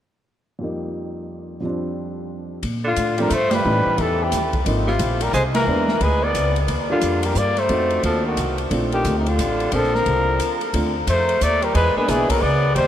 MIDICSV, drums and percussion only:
0, 0, Header, 1, 2, 480
1, 0, Start_track
1, 0, Key_signature, -2, "major"
1, 0, Tempo, 337648
1, 859, Time_signature, 3, 2, 24, 8
1, 18299, End_track
2, 0, Start_track
2, 0, Title_t, "Drums"
2, 3735, Note_on_c, 9, 51, 47
2, 3738, Note_on_c, 9, 36, 22
2, 3877, Note_off_c, 9, 51, 0
2, 3880, Note_off_c, 9, 36, 0
2, 4213, Note_on_c, 9, 44, 50
2, 4213, Note_on_c, 9, 51, 55
2, 4216, Note_on_c, 9, 36, 17
2, 4355, Note_off_c, 9, 44, 0
2, 4355, Note_off_c, 9, 51, 0
2, 4359, Note_off_c, 9, 36, 0
2, 4517, Note_on_c, 9, 51, 41
2, 4659, Note_off_c, 9, 51, 0
2, 4696, Note_on_c, 9, 44, 45
2, 4696, Note_on_c, 9, 51, 58
2, 4697, Note_on_c, 9, 36, 23
2, 4838, Note_off_c, 9, 44, 0
2, 4838, Note_off_c, 9, 51, 0
2, 4839, Note_off_c, 9, 36, 0
2, 4988, Note_on_c, 9, 51, 52
2, 4989, Note_on_c, 9, 38, 68
2, 5130, Note_off_c, 9, 51, 0
2, 5131, Note_off_c, 9, 38, 0
2, 5656, Note_on_c, 9, 51, 44
2, 5660, Note_on_c, 9, 36, 19
2, 5798, Note_off_c, 9, 51, 0
2, 5802, Note_off_c, 9, 36, 0
2, 6138, Note_on_c, 9, 44, 57
2, 6138, Note_on_c, 9, 51, 57
2, 6140, Note_on_c, 9, 38, 33
2, 6141, Note_on_c, 9, 36, 17
2, 6281, Note_off_c, 9, 44, 0
2, 6281, Note_off_c, 9, 51, 0
2, 6282, Note_off_c, 9, 38, 0
2, 6283, Note_off_c, 9, 36, 0
2, 6442, Note_on_c, 9, 51, 36
2, 6446, Note_on_c, 9, 36, 45
2, 6584, Note_off_c, 9, 51, 0
2, 6588, Note_off_c, 9, 36, 0
2, 6624, Note_on_c, 9, 36, 17
2, 6624, Note_on_c, 9, 51, 57
2, 6766, Note_off_c, 9, 36, 0
2, 6766, Note_off_c, 9, 51, 0
2, 6928, Note_on_c, 9, 38, 33
2, 7071, Note_off_c, 9, 38, 0
2, 7098, Note_on_c, 9, 44, 51
2, 7098, Note_on_c, 9, 51, 64
2, 7101, Note_on_c, 9, 36, 16
2, 7240, Note_off_c, 9, 44, 0
2, 7240, Note_off_c, 9, 51, 0
2, 7243, Note_off_c, 9, 36, 0
2, 7400, Note_on_c, 9, 51, 60
2, 7542, Note_off_c, 9, 51, 0
2, 7578, Note_on_c, 9, 44, 51
2, 7580, Note_on_c, 9, 36, 18
2, 7720, Note_off_c, 9, 44, 0
2, 7722, Note_off_c, 9, 36, 0
2, 7884, Note_on_c, 9, 51, 53
2, 7885, Note_on_c, 9, 38, 65
2, 8026, Note_off_c, 9, 51, 0
2, 8028, Note_off_c, 9, 38, 0
2, 8362, Note_on_c, 9, 38, 44
2, 8505, Note_off_c, 9, 38, 0
2, 8537, Note_on_c, 9, 36, 18
2, 8539, Note_on_c, 9, 51, 48
2, 8679, Note_off_c, 9, 36, 0
2, 8682, Note_off_c, 9, 51, 0
2, 9018, Note_on_c, 9, 36, 20
2, 9021, Note_on_c, 9, 44, 46
2, 9021, Note_on_c, 9, 51, 55
2, 9160, Note_off_c, 9, 36, 0
2, 9164, Note_off_c, 9, 44, 0
2, 9164, Note_off_c, 9, 51, 0
2, 9326, Note_on_c, 9, 51, 37
2, 9468, Note_off_c, 9, 51, 0
2, 9496, Note_on_c, 9, 36, 24
2, 9498, Note_on_c, 9, 51, 57
2, 9638, Note_off_c, 9, 36, 0
2, 9640, Note_off_c, 9, 51, 0
2, 9970, Note_on_c, 9, 44, 45
2, 9970, Note_on_c, 9, 51, 57
2, 9974, Note_on_c, 9, 36, 15
2, 10112, Note_off_c, 9, 44, 0
2, 10112, Note_off_c, 9, 51, 0
2, 10116, Note_off_c, 9, 36, 0
2, 10275, Note_on_c, 9, 51, 62
2, 10417, Note_off_c, 9, 51, 0
2, 10450, Note_on_c, 9, 44, 53
2, 10455, Note_on_c, 9, 36, 23
2, 10592, Note_off_c, 9, 44, 0
2, 10597, Note_off_c, 9, 36, 0
2, 10756, Note_on_c, 9, 51, 33
2, 10757, Note_on_c, 9, 38, 30
2, 10898, Note_off_c, 9, 51, 0
2, 10899, Note_off_c, 9, 38, 0
2, 10931, Note_on_c, 9, 51, 51
2, 10936, Note_on_c, 9, 36, 22
2, 11073, Note_off_c, 9, 51, 0
2, 11078, Note_off_c, 9, 36, 0
2, 11237, Note_on_c, 9, 51, 35
2, 11379, Note_off_c, 9, 51, 0
2, 11418, Note_on_c, 9, 36, 15
2, 11421, Note_on_c, 9, 51, 54
2, 11560, Note_off_c, 9, 36, 0
2, 11564, Note_off_c, 9, 51, 0
2, 11898, Note_on_c, 9, 44, 41
2, 11898, Note_on_c, 9, 51, 55
2, 11899, Note_on_c, 9, 36, 20
2, 12041, Note_off_c, 9, 44, 0
2, 12041, Note_off_c, 9, 51, 0
2, 12042, Note_off_c, 9, 36, 0
2, 12198, Note_on_c, 9, 51, 37
2, 12341, Note_off_c, 9, 51, 0
2, 12379, Note_on_c, 9, 36, 22
2, 12380, Note_on_c, 9, 51, 53
2, 12521, Note_off_c, 9, 36, 0
2, 12522, Note_off_c, 9, 51, 0
2, 12685, Note_on_c, 9, 51, 34
2, 12827, Note_off_c, 9, 51, 0
2, 12859, Note_on_c, 9, 44, 47
2, 12859, Note_on_c, 9, 51, 54
2, 12861, Note_on_c, 9, 36, 20
2, 13002, Note_off_c, 9, 44, 0
2, 13002, Note_off_c, 9, 51, 0
2, 13003, Note_off_c, 9, 36, 0
2, 13169, Note_on_c, 9, 51, 39
2, 13311, Note_off_c, 9, 51, 0
2, 13343, Note_on_c, 9, 36, 16
2, 13345, Note_on_c, 9, 44, 42
2, 13345, Note_on_c, 9, 51, 58
2, 13485, Note_off_c, 9, 36, 0
2, 13487, Note_off_c, 9, 44, 0
2, 13487, Note_off_c, 9, 51, 0
2, 13649, Note_on_c, 9, 51, 35
2, 13791, Note_off_c, 9, 51, 0
2, 13813, Note_on_c, 9, 51, 55
2, 13819, Note_on_c, 9, 36, 18
2, 13956, Note_off_c, 9, 51, 0
2, 13961, Note_off_c, 9, 36, 0
2, 13980, Note_on_c, 9, 38, 25
2, 14122, Note_off_c, 9, 38, 0
2, 14142, Note_on_c, 9, 38, 35
2, 14284, Note_off_c, 9, 38, 0
2, 14300, Note_on_c, 9, 51, 49
2, 14302, Note_on_c, 9, 36, 17
2, 14442, Note_off_c, 9, 51, 0
2, 14444, Note_off_c, 9, 36, 0
2, 14779, Note_on_c, 9, 44, 49
2, 14779, Note_on_c, 9, 51, 58
2, 14782, Note_on_c, 9, 36, 17
2, 14921, Note_off_c, 9, 44, 0
2, 14921, Note_off_c, 9, 51, 0
2, 14924, Note_off_c, 9, 36, 0
2, 15083, Note_on_c, 9, 51, 38
2, 15225, Note_off_c, 9, 51, 0
2, 15261, Note_on_c, 9, 36, 21
2, 15263, Note_on_c, 9, 51, 63
2, 15403, Note_off_c, 9, 36, 0
2, 15405, Note_off_c, 9, 51, 0
2, 15741, Note_on_c, 9, 44, 42
2, 15741, Note_on_c, 9, 51, 62
2, 15742, Note_on_c, 9, 36, 20
2, 15884, Note_off_c, 9, 36, 0
2, 15884, Note_off_c, 9, 44, 0
2, 15884, Note_off_c, 9, 51, 0
2, 16046, Note_on_c, 9, 51, 42
2, 16189, Note_off_c, 9, 51, 0
2, 16223, Note_on_c, 9, 44, 52
2, 16223, Note_on_c, 9, 51, 56
2, 16224, Note_on_c, 9, 36, 26
2, 16365, Note_off_c, 9, 44, 0
2, 16365, Note_off_c, 9, 51, 0
2, 16366, Note_off_c, 9, 36, 0
2, 16523, Note_on_c, 9, 51, 40
2, 16665, Note_off_c, 9, 51, 0
2, 16701, Note_on_c, 9, 36, 26
2, 16701, Note_on_c, 9, 51, 55
2, 16843, Note_off_c, 9, 51, 0
2, 16844, Note_off_c, 9, 36, 0
2, 17179, Note_on_c, 9, 44, 48
2, 17179, Note_on_c, 9, 51, 52
2, 17180, Note_on_c, 9, 36, 18
2, 17180, Note_on_c, 9, 38, 36
2, 17321, Note_off_c, 9, 44, 0
2, 17321, Note_off_c, 9, 51, 0
2, 17322, Note_off_c, 9, 36, 0
2, 17322, Note_off_c, 9, 38, 0
2, 17482, Note_on_c, 9, 36, 51
2, 17482, Note_on_c, 9, 51, 66
2, 17624, Note_off_c, 9, 36, 0
2, 17624, Note_off_c, 9, 51, 0
2, 17657, Note_on_c, 9, 36, 24
2, 17799, Note_off_c, 9, 36, 0
2, 18136, Note_on_c, 9, 36, 20
2, 18136, Note_on_c, 9, 51, 57
2, 18278, Note_off_c, 9, 36, 0
2, 18278, Note_off_c, 9, 51, 0
2, 18299, End_track
0, 0, End_of_file